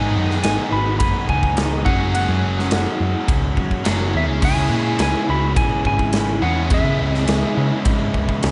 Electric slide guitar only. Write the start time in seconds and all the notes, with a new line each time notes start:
Already playing: G#5
0.44 G#5
0.73 B5
0.99 B5
1.29 G#5
1.85 F#5
2.15 F#5
4.17 E5
4.45 G#5
5.02 G#5
5.30 B5
5.57 G#5
5.87 G#5
6.42 F#5
6.74 E5
7.12 D#5